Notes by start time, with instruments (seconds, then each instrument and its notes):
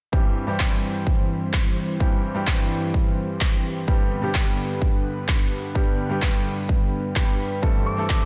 0.12 grand piano G2 E3 G3 C4 G4, analog synth pad G2 E3 C4 G4 C5, kick
0.47 grand piano G2 E3 G3 C4 G4
0.60 kick, clap
1.07 kick
1.53 kick, clap
2.00 grand piano G2 E3 G3 C4 G4, kick
2.34 grand piano G2 E3 G3 C4 G4
2.47 kick, clap
2.94 kick
3.41 kick, clap
3.87 grand piano G2 D3 G3 B3 G4, analog synth pad D3 B3 B4, kick
4.22 grand piano G2 D3 G3 B3 G4
4.35 kick, clap
4.82 kick
5.28 kick, clap
5.75 grand piano G2 D3 G3 B3 G4, kick
6.09 grand piano G2 D3 G3 B3 G4
6.22 kick, clap
6.69 kick
7.15 grand piano G2 D3 G3 B3 G4, kick, clap
7.62 grand piano G2 E3 A3 C4 A4, analog synth pad G2 E3 C4 A4 C5, kick
7.86 synth bell D6
7.97 grand piano G2 E3 A3 C4 A4
8.10 kick, clap